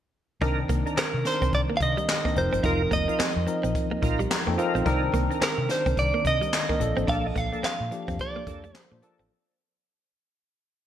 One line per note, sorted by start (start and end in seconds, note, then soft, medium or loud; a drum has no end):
0.41 0.64 C2 loud
0.41 0.98 D#3 loud
0.41 0.99 C4 medium
0.41 0.60 D4 medium
0.41 0.99 D4 medium
0.41 0.60 D#4 medium
0.41 0.56 D#4 medium
0.41 0.60 A#4 loud
0.41 0.99 A#4 loud
0.41 kick loud
0.41 closed hi-hat medium
0.69 0.83 C2 loud
0.69 0.84 A#3 medium
0.69 kick medium
0.69 closed hi-hat medium
0.86 0.99 D4 medium
0.86 1.00 D#4 medium
0.86 1.00 A#4 medium
0.86 muted clean electric guitar stroke soft
0.86 closed hi-hat soft
0.97 1.11 C4 medium
0.97 1.27 A#4 medium
0.97 muted fingered electric bass stroke soft
0.97 snare loud
0.97 clap medium
0.97 closed hi-hat medium
1.14 1.23 C3 medium
1.25 1.94 D#3 medium
1.25 1.94 C4 medium
1.25 1.94 D4 medium
1.25 1.94 A#4 medium
1.25 1.52 C5 medium
1.25 muted clean electric guitar stroke soft
1.25 snare medium
1.25 closed hi-hat medium
1.42 1.51 C2 medium
1.42 1.51 C4 medium
1.42 kick medium
1.42 closed hi-hat medium
1.53 1.67 C2 medium
1.53 1.60 D5 loud
1.53 kick medium
1.53 closed hi-hat medium
1.70 1.79 A#3 medium
1.77 1.94 C3 medium
1.77 1.81 F5 medium
1.77 muted clean electric guitar stroke soft
1.77 kick loud
1.77 closed hi-hat medium
1.83 2.39 D#5 loud
1.97 2.06 G3 medium
1.97 closed hi-hat medium
2.08 snare loud
2.08 clap loud
2.08 closed hi-hat medium
2.25 2.33 D#3 medium
2.25 2.34 A#3 medium
2.25 2.33 C4 medium
2.25 2.33 D4 medium
2.25 2.33 A#4 medium
2.25 kick loud
2.36 2.50 F1 loud
2.36 3.26 F3 medium
2.36 3.26 C4 medium
2.36 3.27 D#4 medium
2.36 3.27 A#4 medium
2.36 2.65 C5 medium
2.36 muted clean electric guitar stroke soft
2.36 closed hi-hat medium
2.53 2.62 G1 medium
2.53 2.62 C4 medium
2.53 closed hi-hat medium
2.63 2.86 F1 loud
2.63 2.82 D#4 medium
2.63 2.78 D#4 medium
2.63 2.82 F4 medium
2.63 2.82 A#4 loud
2.63 2.93 A#4 medium
2.63 kick loud
2.63 closed hi-hat medium
2.91 3.05 F1 medium
2.91 3.05 A#3 medium
2.91 4.55 D#5 medium
2.91 kick medium
2.91 closed hi-hat medium
3.08 3.22 D#4 medium
3.08 3.22 F4 medium
3.08 3.22 A#4 medium
3.08 muted clean electric guitar stroke soft
3.08 closed hi-hat medium
3.19 3.33 C4 medium
3.19 muted fingered electric bass stroke soft
3.19 snare loud
3.19 clap medium
3.19 closed hi-hat medium
3.36 3.45 F2 medium
3.47 4.16 F3 medium
3.47 4.16 C4 medium
3.47 4.16 D#4 medium
3.47 4.16 A#4 medium
3.47 muted clean electric guitar stroke soft
3.47 closed hi-hat medium
3.63 3.73 A#1 medium
3.63 3.73 C4 medium
3.63 closed hi-hat medium
3.75 kick medium
3.75 closed hi-hat medium
3.91 4.01 A#3 medium
4.02 4.25 A#1 medium
4.02 4.21 D#4 medium
4.02 4.21 F4 medium
4.02 4.21 A#4 medium
4.02 muted clean electric guitar stroke soft
4.02 kick loud
4.02 closed hi-hat medium
4.19 4.29 G3 medium
4.19 closed hi-hat medium
4.31 4.46 A#5 medium
4.31 snare loud
4.31 clap loud
4.31 closed hi-hat medium
4.47 4.56 F2 medium
4.47 4.55 F3 medium
4.47 4.56 A#3 medium
4.47 4.55 C4 medium
4.47 4.55 D#4 medium
4.47 4.55 A4 medium
4.47 4.58 G5 medium
4.57 4.79 F3 loud
4.57 4.79 C4 loud
4.57 4.77 D#4 medium
4.57 4.79 D#4 loud
4.57 4.77 F4 medium
4.57 4.77 A#4 medium
4.57 4.79 A#4 loud
4.57 4.84 F5 medium
4.57 muted clean electric guitar stroke soft
4.57 closed hi-hat medium
4.75 4.84 A#1 medium
4.75 4.84 C4 medium
4.75 closed hi-hat medium
4.85 5.08 C2 loud
4.85 5.43 D#3 loud
4.85 5.43 C4 medium
4.85 5.04 D4 medium
4.85 5.43 D4 medium
4.85 5.04 D#4 medium
4.85 5.00 D#4 medium
4.85 5.05 A#4 loud
4.85 5.43 A#4 loud
4.85 kick loud
4.85 closed hi-hat medium
5.14 5.27 C2 medium
5.14 5.28 A#3 medium
5.14 kick medium
5.14 closed hi-hat medium
5.30 5.44 D4 medium
5.30 5.44 D#4 medium
5.30 5.44 A#4 medium
5.30 muted clean electric guitar stroke soft
5.30 closed hi-hat medium
5.41 5.56 C4 medium
5.41 5.71 A#4 medium
5.41 muted fingered electric bass stroke soft
5.41 snare loud
5.41 clap medium
5.41 closed hi-hat medium
5.58 5.67 C3 medium
5.69 6.38 D#3 medium
5.69 6.38 C4 medium
5.69 6.38 D4 medium
5.69 6.38 A#4 medium
5.69 5.99 C5 medium
5.69 muted clean electric guitar stroke soft
5.69 snare medium
5.69 closed hi-hat medium
5.86 5.95 C2 medium
5.86 5.95 C4 medium
5.86 kick medium
5.86 closed hi-hat medium
5.97 6.11 C2 medium
5.97 6.27 D5 loud
5.97 kick medium
5.97 closed hi-hat medium
6.14 6.23 A#3 medium
6.25 6.38 C3 medium
6.25 7.09 D#5 loud
6.25 muted clean electric guitar stroke soft
6.25 kick loud
6.25 closed hi-hat medium
6.41 6.51 G3 medium
6.41 closed hi-hat medium
6.53 snare loud
6.53 clap loud
6.53 closed hi-hat medium
6.69 6.77 D#3 medium
6.69 6.79 A#3 medium
6.69 6.77 C4 medium
6.69 6.77 D4 medium
6.69 6.78 A#4 medium
6.69 kick medium
6.80 6.94 A#1 loud
6.80 7.70 F3 medium
6.80 7.71 A#3 medium
6.80 7.71 D4 medium
6.80 7.71 A4 medium
6.80 muted clean electric guitar stroke soft
6.80 closed hi-hat medium
6.97 7.06 A1 medium
6.97 7.06 C4 medium
6.97 closed hi-hat soft
7.07 7.31 A#1 loud
7.07 7.27 A#3 medium
7.07 7.22 D4 medium
7.07 7.27 D4 medium
7.07 7.27 A4 loud
7.07 7.26 F5 loud
7.07 kick loud
7.07 closed hi-hat medium
7.26 7.38 D#5 loud
7.36 7.50 A#1 medium
7.36 7.50 A#3 medium
7.36 7.64 F5 loud
7.36 kick medium
7.36 closed hi-hat medium
7.52 7.66 A#3 medium
7.52 7.66 D4 medium
7.52 7.66 A4 medium
7.52 muted clean electric guitar stroke soft
7.52 closed hi-hat soft
7.63 7.78 C4 medium
7.63 8.20 F5 loud
7.63 muted fingered electric bass stroke soft
7.63 snare loud
7.63 clap loud
7.63 closed hi-hat medium
7.80 7.89 A#2 medium
7.91 8.60 F3 medium
7.91 8.60 A#3 medium
7.91 8.60 D4 medium
7.91 8.61 G4 medium
7.91 muted clean electric guitar stroke soft
7.91 closed hi-hat medium
8.08 8.17 F2 medium
8.08 8.17 C4 medium
8.08 kick medium
8.08 closed hi-hat medium
8.19 8.78 D5 medium
8.19 kick medium
8.19 closed hi-hat medium
8.36 8.45 A#3 medium
8.47 8.70 F2 medium
8.47 8.65 A#3 medium
8.47 8.66 D4 medium
8.47 8.66 A4 medium
8.47 muted clean electric guitar stroke soft
8.47 kick loud
8.47 closed hi-hat medium
8.64 8.73 A3 medium
8.64 closed hi-hat medium
8.74 8.99 C5 medium
8.74 snare loud
8.74 clap loud
8.74 closed hi-hat medium
8.91 9.00 A#2 medium
8.91 8.99 F3 medium
8.91 9.01 A#3 medium
8.91 8.99 A#3 medium
8.91 8.99 D4 medium
8.91 9.00 C5 medium
9.02 9.23 F3 loud
9.02 9.21 A#3 medium
9.02 9.24 A#3 medium
9.02 9.21 D4 medium
9.02 9.24 D4 loud
9.02 9.21 A4 medium
9.02 9.24 A4 loud
9.02 muted clean electric guitar stroke soft
9.02 closed hi-hat medium
9.19 9.28 A1 medium
9.19 9.29 C4 medium
9.19 closed hi-hat medium